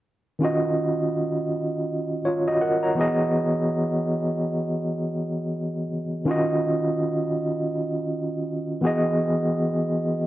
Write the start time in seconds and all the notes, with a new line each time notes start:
0.39 D#3 C#4 F4
0.43 F#4 D#5
2.25 F4 C#5
2.48 F#4 D#5
2.61 A#4 F#5
2.83 C#5 A#5
2.95 E3 B3 F#4
2.99 G#4 D#5
6.25 D#3 C#4 F4
6.29 F#4 D#5
8.81 E3 B3 F#4 G#4
8.87 D#5